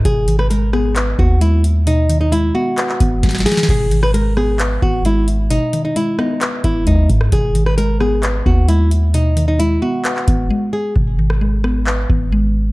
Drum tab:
CC |------------------------------------------------------------------------------------------------|------------------------------------------------------------------------------------------------|x-----------------------------------------------------------------------------------------------|------------------------------------------------------------------------------------------------|
HH |x-----------x-----------x-----------------------x-----------------------x-----------x-----------|x-----------x-----------x-----------------------x-----------x-----------x---x---x---o-----------|------------x-----------x-----------------------x-----------------------x-----------x-----------|x-----------x-----------x-----------------------x-----------x-----------x-----------x-----------|
CP |------------------------------------------------x-----------------------------------------------|------------------------------------------------x-----x-----------------------------------------|------------------------------------------------x-----------------------------------------------|------------------------------------------------x-----------------------------------------------|
SD |------------------r-----------------r-----------------------------------------------------------|------------------------------------------------------------------------o--o--o--o--o--o--o--o--|------------------r-----------------r-----------------------------------------------------------|------------------------------------r-----------------------------------------------------r-----|
BD |o-----------------------------------------------------------o-----------------------------------|------------------------------------------------------------o-----------o-----------------------|o-----------------------------------------------------------o-----------------------------------|------------------------------------------------------------o-----------o-----------o-----------|

CC |------------------------------------------------------------------------------------------------|------------------------------------------------------------------------------------------------|------------------------------------------------------------------------------------------------|
HH |x-----------x-----------x-----------------------x-----------------------x-----------x-----------|x-----------x-----------x-----------------------x-----------x-----------------------------------|------------------------------------------------------------------------------------------------|
CP |------------------------------------------------x-----------------------------------------------|------------------------------------------------x-----x-----------------------------------------|------------------------------------------------x-----------------------------------------------|
SD |------------------r-----------------r-----------------------------------------------------------|------------------------------------------------------------------------------------------------|------------------r-----------------r-----------------------------------------------------------|
BD |o-----------------------------------------------------------o-----------------------------------|------------------------------------------------------------o-----------------------------------|o-----------------------------------------------------------o-----------------------------------|